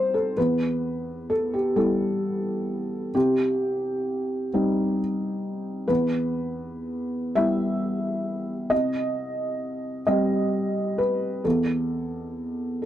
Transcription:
Already playing: G3 C4 D#4 C5
0.14 A4
0.37 E2 B4
1.30 A4
1.54 G4
1.76 G3 B3 E4 A4
3.15 C2 G4
4.54 G3 C4 D#4
5.88 E2 B4
7.35 G3 B3 E4 E5
8.70 C2 D#5
10.07 G3 C4 G4 D#5
10.98 B4
11.44 E2 A4
12.82 A4

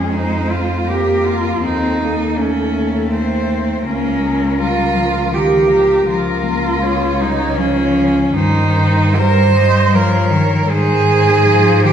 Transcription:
Already playing: F2 G#3 C#4 G#4
0.13 D#4 C5
0.51 F4
0.87 A#3 G4 A#4
1.24 F4
1.61 D#2 C4 D#4 A4
2.00 A#3
2.37 A3 C#4
3.12 C4 C5
3.85 C#2 A#3 C#4 A#4
4.22 G#3
4.59 G3 F4
4.95 F3
5.32 D#3 G4 A#4
5.68 F3
6.06 C#2 F3 F4 A#4
6.44 A#3
6.81 G#3 C#5
7.18 G3 D#4
7.56 F3 C#4
8.33 G2 D#3 D#4 C5
9.16 G3 A#4 C5
9.55 D#5
9.93 F3 A#4 C#5
10.30 D#3
10.68 G#2 D#3 G#4 C5
11.47 F3 C5
11.84 D#3 G4

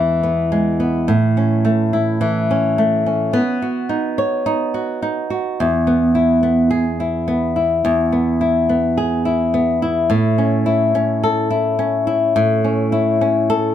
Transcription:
Already playing: E2 E3 G#3 B3 E4
0.23 B3
0.52 G#3
0.80 B3
1.08 A2
1.37 C#4
1.65 A3
1.93 E4
2.21 E3
2.51 C#4
2.78 A3
3.06 C#4
3.33 B3
3.62 F#4
3.89 D#4
4.18 C#5
4.46 D#4
4.74 F#4
5.02 D#4
5.30 F#4
5.60 E2
5.87 B3
6.15 E4
6.43 B3
6.71 G#4
7.00 E4
7.28 B3
7.56 E4
7.85 E2
8.12 B3
8.41 E4
8.69 B3
8.98 G#4
9.25 E4
9.54 B3
9.82 E4
10.10 A2
10.38 C#4
10.66 E4
10.95 C#4
11.24 A4
11.50 E4
11.79 C#4
12.07 E4
12.36 A2
12.64 C#4
12.92 E4
13.21 C#4
13.50 A4

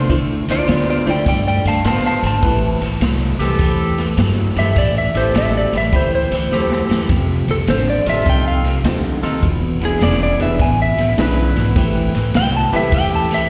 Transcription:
Already playing: D4 F4 C5
0.09 D2 D3 A3 D4 E4 F4 C5, kick, ride
0.48 D2 D3 A3 D4 F4 C5 D5, snare, ride
0.68 D2 D3 B3 F4 D5, snare, ride
0.89 F4 D5
1.05 D2 D3 A3 D4 E4 F4 C5, snare, ride
1.10 D5 G5
1.26 G2 D3 A3 D5 G5, kick, ride
1.47 D5 G5
1.65 G2 D3 A3 F5 A5, snare, ride
1.84 A2 D3 B3 D4 F4 C5 F5 A5, snare, ride
2.06 F5 A5
2.23 G#1 D3 A3, snare, ride
2.27 A5
2.42 A1 A2 E3 A3 C4 E4 G4 B4, kick, ride
2.81 A1 A2 E3, snare, ride
3.00 C2 A2 F#3, snare, ride
3.39 C2 A2 E3 C4 G4 A4, snare, ride
3.59 E2 A2 E3, kick, ride
3.98 A2 E3, snare, ride
4.17 G2 A2 F#3, snare, ride
4.56 G2 A2 E3 C4 G4 A4 E5, snare, ride
4.76 A1 A2 E3 D5, kick, snare, ride
4.98 E5
5.15 A1 A2 E3 C4 G4 A4 C5, snare, ride
5.34 A1 A2 F#3 E5, snare, ride
5.57 D5
5.73 A1 A2 E3, snare, ride
5.77 E5
5.92 D2 A2 E3 A3 C4 E4 G4 C5 B5, kick, ride
6.15 C5
6.31 D2 A2 E3, snare, ride
6.51 E2 A2 F#3 C4 G4 A4, snare
6.72 snare
6.89 E2 A2 E3, snare
7.09 F1 F2 C3, kick, snare, ride
7.47 F1 F2 C3 A4, snare, ride
7.67 A1 F2 D3 C5, snare, ride
7.90 D5
8.06 A1 F2 C3 D#4 F4 A4 E5, snare, ride
8.26 C2 F2 C3 G5, kick, ride
8.48 F5
8.64 F2 C3, snare, ride
8.84 D#2 F2 D3 A3 D#4 F4 G4 C5, snare, ride
9.22 D#2 F2 C3 D#4 F4 A4, snare, ride
9.42 E1 E2 B2, kick, ride
9.80 E1 E2 B2 D4 E4 G#4, snare, ride
9.85 G#4
10.01 E1 E2 C#3 D5, snare, ride
10.23 D5
10.39 E1 E2 B2 B3 D4 E4 G#4 B4 E5, snare, ride
10.59 A1 E2 B2 G#5, kick, ride
10.82 E5
10.97 A1 E2 B2, snare, ride
11.17 B1 E2 C#3 B3 D4 E4 G#4 B4, snare, ride
11.56 G#1 E2 B2, snare, ride
11.76 A1 A2 E3 A3 C4 E4 G4 B4, kick, ride
12.14 A1 A2 E3, snare, ride
12.34 C2 A2 F#3 G5, snare, ride
12.57 A5
12.72 C2 A2 E3 A3 C4 E4 G4 A4 B4 E5, snare, ride
12.92 E2 A2 E3 G5, kick, snare, ride
13.15 A5
13.31 A2 E3 E5, snare, ride

